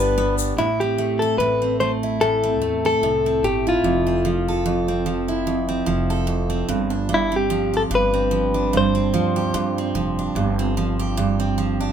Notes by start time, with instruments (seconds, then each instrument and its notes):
Already playing: upright bass G1, tonewheel organ G3 G4 B4 D5, steel-string acoustic guitar G3 B3 D4, clean electric guitar B4
0.18 steel-string acoustic guitar B3
0.38 shaker
0.56 upright bass A1, steel-string acoustic guitar A2, clean electric guitar E4
0.80 steel-string acoustic guitar C4, clean electric guitar G4
0.98 steel-string acoustic guitar A3
1.19 clean electric guitar A4, steel-string acoustic guitar A4
1.38 upright bass A1, steel-string acoustic guitar A2, clean electric guitar B4
1.62 steel-string acoustic guitar C4
1.80 steel-string acoustic guitar A3, clean electric guitar C5
2.03 steel-string acoustic guitar E4
2.21 steel-string acoustic guitar A2, clean electric guitar A4
2.44 steel-string acoustic guitar C4
2.61 upright bass E2, steel-string acoustic guitar A3
2.85 steel-string acoustic guitar A4, clean electric guitar A4
3.02 upright bass C2, steel-string acoustic guitar A2
3.26 steel-string acoustic guitar C4
3.43 upright bass G1, steel-string acoustic guitar A3, clean electric guitar G4
3.67 steel-string acoustic guitar E4, clean electric guitar F4
3.84 upright bass F1, steel-string acoustic guitar F2
4.07 steel-string acoustic guitar C4
4.25 steel-string acoustic guitar F3
4.48 steel-string acoustic guitar A4
4.66 steel-string acoustic guitar F2
4.88 steel-string acoustic guitar C4
5.06 steel-string acoustic guitar F3
5.28 steel-string acoustic guitar E4
5.47 steel-string acoustic guitar F2
5.69 steel-string acoustic guitar C4
5.86 upright bass F1, steel-string acoustic guitar F3
6.10 steel-string acoustic guitar A4
6.27 steel-string acoustic guitar F2
6.50 steel-string acoustic guitar C4
6.68 upright bass G1, steel-string acoustic guitar G2
6.90 steel-string acoustic guitar D4
7.09 steel-string acoustic guitar G2
7.14 clean electric guitar E4
7.32 steel-string acoustic guitar C4
7.36 clean electric guitar G4
7.50 steel-string acoustic guitar F3
7.74 steel-string acoustic guitar G4, clean electric guitar A4
7.90 upright bass G1, steel-string acoustic guitar G2
7.95 clean electric guitar B4
8.14 steel-string acoustic guitar C4
8.31 steel-string acoustic guitar F3
8.54 steel-string acoustic guitar D4
8.73 steel-string acoustic guitar G2
8.77 clean electric guitar C5
8.95 steel-string acoustic guitar C4
9.13 upright bass D2, steel-string acoustic guitar F3
9.36 steel-string acoustic guitar G4
9.54 upright bass G2, steel-string acoustic guitar G2
9.78 steel-string acoustic guitar C4
9.94 upright bass F1, steel-string acoustic guitar F3
10.19 steel-string acoustic guitar D4
10.35 upright bass G1, steel-string acoustic guitar G2
10.59 steel-string acoustic guitar C4
10.77 steel-string acoustic guitar F3
10.99 steel-string acoustic guitar G4
11.17 steel-string acoustic guitar G2
11.40 steel-string acoustic guitar C4
11.58 steel-string acoustic guitar F3
11.80 steel-string acoustic guitar D4